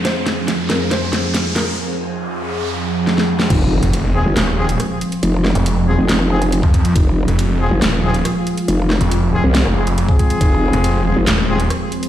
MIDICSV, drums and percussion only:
0, 0, Header, 1, 2, 480
1, 0, Start_track
1, 0, Key_signature, -4, "minor"
1, 0, Tempo, 431655
1, 54, Time_signature, 4, 2, 24, 8
1, 13442, End_track
2, 0, Start_track
2, 0, Title_t, "Drums"
2, 54, Note_on_c, 9, 38, 77
2, 54, Note_on_c, 9, 42, 74
2, 166, Note_off_c, 9, 38, 0
2, 166, Note_off_c, 9, 42, 0
2, 294, Note_on_c, 9, 38, 73
2, 294, Note_on_c, 9, 42, 49
2, 406, Note_off_c, 9, 38, 0
2, 406, Note_off_c, 9, 42, 0
2, 534, Note_on_c, 9, 38, 82
2, 534, Note_on_c, 9, 42, 76
2, 646, Note_off_c, 9, 38, 0
2, 646, Note_off_c, 9, 42, 0
2, 775, Note_on_c, 9, 38, 82
2, 775, Note_on_c, 9, 42, 54
2, 886, Note_off_c, 9, 38, 0
2, 886, Note_off_c, 9, 42, 0
2, 1015, Note_on_c, 9, 38, 84
2, 1015, Note_on_c, 9, 42, 75
2, 1126, Note_off_c, 9, 38, 0
2, 1126, Note_off_c, 9, 42, 0
2, 1255, Note_on_c, 9, 38, 80
2, 1255, Note_on_c, 9, 42, 49
2, 1366, Note_off_c, 9, 38, 0
2, 1366, Note_off_c, 9, 42, 0
2, 1494, Note_on_c, 9, 38, 87
2, 1494, Note_on_c, 9, 42, 75
2, 1606, Note_off_c, 9, 38, 0
2, 1606, Note_off_c, 9, 42, 0
2, 1734, Note_on_c, 9, 38, 89
2, 1734, Note_on_c, 9, 42, 51
2, 1846, Note_off_c, 9, 38, 0
2, 1846, Note_off_c, 9, 42, 0
2, 3415, Note_on_c, 9, 38, 62
2, 3526, Note_off_c, 9, 38, 0
2, 3535, Note_on_c, 9, 38, 66
2, 3646, Note_off_c, 9, 38, 0
2, 3775, Note_on_c, 9, 38, 85
2, 3887, Note_off_c, 9, 38, 0
2, 3895, Note_on_c, 9, 36, 115
2, 3895, Note_on_c, 9, 42, 84
2, 3895, Note_on_c, 9, 49, 107
2, 4006, Note_off_c, 9, 36, 0
2, 4007, Note_off_c, 9, 42, 0
2, 4007, Note_off_c, 9, 49, 0
2, 4255, Note_on_c, 9, 42, 55
2, 4367, Note_off_c, 9, 42, 0
2, 4375, Note_on_c, 9, 42, 88
2, 4486, Note_off_c, 9, 42, 0
2, 4855, Note_on_c, 9, 38, 116
2, 4855, Note_on_c, 9, 42, 81
2, 4966, Note_off_c, 9, 38, 0
2, 4966, Note_off_c, 9, 42, 0
2, 4975, Note_on_c, 9, 37, 51
2, 5086, Note_off_c, 9, 37, 0
2, 5215, Note_on_c, 9, 42, 56
2, 5326, Note_off_c, 9, 42, 0
2, 5335, Note_on_c, 9, 37, 52
2, 5335, Note_on_c, 9, 42, 82
2, 5446, Note_off_c, 9, 37, 0
2, 5446, Note_off_c, 9, 42, 0
2, 5575, Note_on_c, 9, 42, 56
2, 5686, Note_off_c, 9, 42, 0
2, 5695, Note_on_c, 9, 42, 54
2, 5806, Note_off_c, 9, 42, 0
2, 5814, Note_on_c, 9, 42, 83
2, 5925, Note_off_c, 9, 42, 0
2, 6054, Note_on_c, 9, 37, 48
2, 6054, Note_on_c, 9, 38, 63
2, 6165, Note_off_c, 9, 37, 0
2, 6165, Note_off_c, 9, 38, 0
2, 6174, Note_on_c, 9, 42, 54
2, 6286, Note_off_c, 9, 42, 0
2, 6294, Note_on_c, 9, 42, 83
2, 6405, Note_off_c, 9, 42, 0
2, 6775, Note_on_c, 9, 38, 121
2, 6775, Note_on_c, 9, 42, 80
2, 6886, Note_off_c, 9, 38, 0
2, 6886, Note_off_c, 9, 42, 0
2, 6895, Note_on_c, 9, 37, 51
2, 7007, Note_off_c, 9, 37, 0
2, 7135, Note_on_c, 9, 42, 54
2, 7247, Note_off_c, 9, 42, 0
2, 7255, Note_on_c, 9, 42, 78
2, 7366, Note_off_c, 9, 42, 0
2, 7375, Note_on_c, 9, 36, 107
2, 7486, Note_off_c, 9, 36, 0
2, 7495, Note_on_c, 9, 36, 59
2, 7495, Note_on_c, 9, 42, 53
2, 7606, Note_off_c, 9, 36, 0
2, 7606, Note_off_c, 9, 42, 0
2, 7615, Note_on_c, 9, 42, 51
2, 7727, Note_off_c, 9, 42, 0
2, 7735, Note_on_c, 9, 36, 115
2, 7735, Note_on_c, 9, 42, 81
2, 7846, Note_off_c, 9, 36, 0
2, 7846, Note_off_c, 9, 42, 0
2, 8095, Note_on_c, 9, 42, 50
2, 8207, Note_off_c, 9, 42, 0
2, 8215, Note_on_c, 9, 42, 78
2, 8327, Note_off_c, 9, 42, 0
2, 8695, Note_on_c, 9, 38, 125
2, 8695, Note_on_c, 9, 42, 78
2, 8807, Note_off_c, 9, 38, 0
2, 8807, Note_off_c, 9, 42, 0
2, 8816, Note_on_c, 9, 37, 50
2, 8927, Note_off_c, 9, 37, 0
2, 9056, Note_on_c, 9, 42, 53
2, 9167, Note_off_c, 9, 42, 0
2, 9175, Note_on_c, 9, 37, 50
2, 9175, Note_on_c, 9, 42, 78
2, 9287, Note_off_c, 9, 37, 0
2, 9287, Note_off_c, 9, 42, 0
2, 9416, Note_on_c, 9, 42, 50
2, 9527, Note_off_c, 9, 42, 0
2, 9536, Note_on_c, 9, 42, 51
2, 9647, Note_off_c, 9, 42, 0
2, 9656, Note_on_c, 9, 42, 75
2, 9767, Note_off_c, 9, 42, 0
2, 9896, Note_on_c, 9, 37, 50
2, 9896, Note_on_c, 9, 38, 62
2, 10007, Note_off_c, 9, 37, 0
2, 10007, Note_off_c, 9, 38, 0
2, 10016, Note_on_c, 9, 42, 52
2, 10127, Note_off_c, 9, 42, 0
2, 10135, Note_on_c, 9, 42, 82
2, 10247, Note_off_c, 9, 42, 0
2, 10615, Note_on_c, 9, 38, 120
2, 10615, Note_on_c, 9, 42, 75
2, 10726, Note_off_c, 9, 38, 0
2, 10726, Note_off_c, 9, 42, 0
2, 10736, Note_on_c, 9, 37, 50
2, 10847, Note_off_c, 9, 37, 0
2, 10975, Note_on_c, 9, 42, 50
2, 11086, Note_off_c, 9, 42, 0
2, 11095, Note_on_c, 9, 42, 78
2, 11207, Note_off_c, 9, 42, 0
2, 11215, Note_on_c, 9, 36, 106
2, 11326, Note_off_c, 9, 36, 0
2, 11335, Note_on_c, 9, 36, 61
2, 11335, Note_on_c, 9, 42, 49
2, 11446, Note_off_c, 9, 36, 0
2, 11446, Note_off_c, 9, 42, 0
2, 11456, Note_on_c, 9, 42, 49
2, 11567, Note_off_c, 9, 42, 0
2, 11575, Note_on_c, 9, 36, 117
2, 11575, Note_on_c, 9, 42, 76
2, 11686, Note_off_c, 9, 36, 0
2, 11686, Note_off_c, 9, 42, 0
2, 11935, Note_on_c, 9, 42, 50
2, 12047, Note_off_c, 9, 42, 0
2, 12055, Note_on_c, 9, 42, 78
2, 12166, Note_off_c, 9, 42, 0
2, 12535, Note_on_c, 9, 38, 120
2, 12535, Note_on_c, 9, 39, 87
2, 12535, Note_on_c, 9, 42, 76
2, 12646, Note_off_c, 9, 38, 0
2, 12646, Note_off_c, 9, 39, 0
2, 12646, Note_off_c, 9, 42, 0
2, 12655, Note_on_c, 9, 37, 55
2, 12766, Note_off_c, 9, 37, 0
2, 12895, Note_on_c, 9, 42, 49
2, 13006, Note_off_c, 9, 42, 0
2, 13015, Note_on_c, 9, 37, 56
2, 13015, Note_on_c, 9, 42, 77
2, 13126, Note_off_c, 9, 37, 0
2, 13126, Note_off_c, 9, 42, 0
2, 13254, Note_on_c, 9, 42, 52
2, 13366, Note_off_c, 9, 42, 0
2, 13375, Note_on_c, 9, 42, 51
2, 13442, Note_off_c, 9, 42, 0
2, 13442, End_track
0, 0, End_of_file